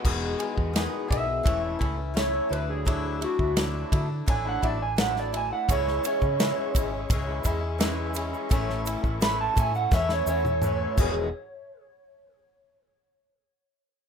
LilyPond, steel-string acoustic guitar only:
\new Staff \with { instrumentName = "Steel-string acoustic guitar" } { \time 4/4 \key e \major \tempo 4 = 85 <e, b, dis gis b gis'>8 <dis gis b gis'>8 <dis gis b gis'>8 <dis gis b gis'>8 <e a cis' e'>8 <a cis' e'>8 <e a cis' e'>8 <a d' e'>8 | <d fis a d' e'>8 <a d' e'>8 <fis a d' e'>8 <a d' e'>8 <d fis a d' e'>8 <a d' e'>8 <fis a d' e'>8 <a d' e'>8 | <cis e gis cis' e'>8 <gis cis' e'>8 <e gis cis' e'>8 <gis cis' e'>8 <cis e gis cis' e'>8 <gis cis' e'>8 <e gis cis' e'>8 <gis cis' e'>8 | <a, e a cis' e'>8 <a cis' e'>8 <e a cis' e'>8 <a cis' e'>8 <a, e a cis' e'>8 <a cis' e'>8 <e a cis' e'>8 <e, b, dis gis b gis'>8 |
r1 | }